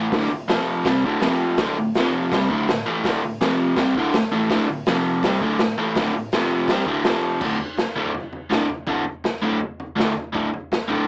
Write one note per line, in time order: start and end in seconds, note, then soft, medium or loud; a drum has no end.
0.00 0.11 A2 medium
0.00 0.11 E3 medium
0.00 0.12 A3 loud
0.11 0.28 D2 medium
0.11 0.28 A2 loud
0.11 0.30 D3 loud
0.11 kick loud
0.11 snare loud
0.11 open hi-hat medium
0.30 0.45 D2 medium
0.30 0.45 A2 medium
0.48 0.84 F2 medium
0.48 0.84 C3 loud
0.48 0.85 F3 loud
0.48 snare loud
0.48 open hi-hat medium
0.85 1.03 C3 loud
0.85 1.03 G3 loud
0.85 1.04 C4 loud
0.85 kick loud
0.85 snare loud
0.85 open hi-hat medium
1.03 1.21 D2 loud
1.03 1.22 A2 medium
1.03 1.22 D3 medium
1.03 kick medium
1.20 1.57 F2 medium
1.20 1.58 C3 medium
1.20 1.58 F3 medium
1.20 snare medium
1.20 open hi-hat medium
1.57 1.76 D2 medium
1.57 1.76 A2 medium
1.57 1.77 D3 loud
1.57 kick loud
1.57 snare loud
1.57 open hi-hat medium
1.77 1.91 D2 medium
1.77 1.92 A2 medium
1.94 2.32 F2 medium
1.94 2.32 F3 loud
1.94 snare loud
1.94 open hi-hat medium
1.98 2.32 C3 medium
2.32 2.49 C3 loud
2.32 2.50 G3 loud
2.32 2.50 C4 loud
2.32 kick loud
2.32 snare loud
2.32 open hi-hat medium
2.49 2.67 D2 loud
2.49 2.67 A2 loud
2.49 2.68 D3 medium
2.49 kick medium
2.68 2.83 D2 medium
2.68 2.83 A2 medium
2.68 snare loud
2.68 open hi-hat medium
2.86 3.03 A2 medium
2.86 3.04 E3 medium
2.86 3.04 A3 loud
3.04 3.22 D2 medium
3.04 3.22 A2 medium
3.04 3.23 D3 loud
3.04 kick loud
3.04 snare loud
3.04 open hi-hat medium
3.23 3.37 D2 medium
3.23 3.37 A2 medium
3.40 3.76 F2 loud
3.40 3.76 C3 loud
3.40 3.77 F3 loud
3.40 snare loud
3.40 open hi-hat soft
3.76 3.95 C3 medium
3.76 3.95 G3 loud
3.76 3.96 C4 loud
3.76 kick loud
3.76 snare loud
3.76 open hi-hat medium
3.95 4.12 D2 medium
3.95 4.13 A2 loud
3.95 4.14 D3 loud
3.95 kick medium
4.13 4.28 D2 medium
4.13 4.28 A2 medium
4.13 snare loud
4.13 open hi-hat medium
4.32 4.49 A2 medium
4.32 4.50 E3 medium
4.32 4.50 A3 loud
4.50 4.67 D2 medium
4.50 4.67 A2 loud
4.50 4.68 D3 loud
4.50 kick loud
4.50 snare loud
4.50 open hi-hat medium
4.69 4.83 D2 medium
4.69 4.83 A2 medium
4.86 5.23 F2 loud
4.86 5.23 C3 loud
4.86 5.24 F3 medium
4.86 snare loud
4.86 open hi-hat medium
5.23 5.40 C3 loud
5.23 5.41 G3 loud
5.23 5.42 C4 loud
5.23 kick loud
5.23 snare loud
5.23 open hi-hat medium
5.41 5.58 D2 loud
5.41 5.59 A2 medium
5.41 5.59 D3 loud
5.41 kick medium
5.58 5.74 D2 medium
5.58 5.74 A2 medium
5.58 snare loud
5.58 open hi-hat medium
5.78 5.95 A2 medium
5.78 5.95 E3 loud
5.78 5.96 A3 loud
5.95 6.13 D2 medium
5.95 6.12 A2 loud
5.95 6.14 D3 loud
5.95 kick loud
5.95 snare loud
5.95 open hi-hat medium
6.14 6.28 D2 medium
6.14 6.28 A2 medium
6.32 6.69 F2 medium
6.32 6.69 C3 loud
6.32 6.69 F3 medium
6.32 snare loud
6.32 open hi-hat medium
6.68 6.85 C3 medium
6.68 6.87 G3 loud
6.68 6.88 C4 loud
6.68 kick loud
6.68 snare loud
6.68 open hi-hat medium
6.86 7.04 D2 medium
6.86 7.05 A2 loud
6.86 7.05 D3 loud
6.86 kick medium
7.04 7.41 F2 medium
7.04 7.42 C3 loud
7.04 7.42 F3 loud
7.04 snare loud
7.04 open hi-hat medium
7.41 7.56 D2 medium
7.41 7.57 A2 medium
7.41 7.57 D3 medium
7.41 kick loud
7.41 floor tom medium
7.41 crash loud
7.60 floor tom medium
7.77 snare medium
7.77 floor tom medium
7.96 8.11 D2 medium
7.96 8.11 A2 medium
7.96 8.12 D3 loud
7.96 floor tom medium
8.14 floor tom medium
8.33 floor tom medium
8.50 8.65 D2 medium
8.50 8.66 A2 medium
8.50 8.66 D3 medium
8.50 snare loud
8.50 floor tom medium
8.70 floor tom medium
8.87 9.03 D2 medium
8.87 9.03 A2 medium
8.87 9.03 D3 medium
8.87 kick loud
8.87 floor tom medium
9.05 floor tom medium
9.24 snare medium
9.24 floor tom medium
9.42 9.57 D2 medium
9.42 9.58 A2 loud
9.42 9.58 D3 medium
9.42 floor tom medium
9.61 floor tom medium
9.80 floor tom medium
9.96 10.12 D2 medium
9.96 10.12 A2 medium
9.96 10.13 D3 medium
9.96 snare loud
9.96 floor tom medium
10.17 floor tom medium
10.33 10.49 D2 medium
10.33 10.50 A2 medium
10.33 10.50 D3 medium
10.33 kick loud
10.33 floor tom medium
10.53 floor tom medium
10.72 snare loud
10.72 floor tom medium
10.88 11.04 D2 medium
10.88 11.05 A2 loud
10.88 11.05 D3 medium
10.88 floor tom medium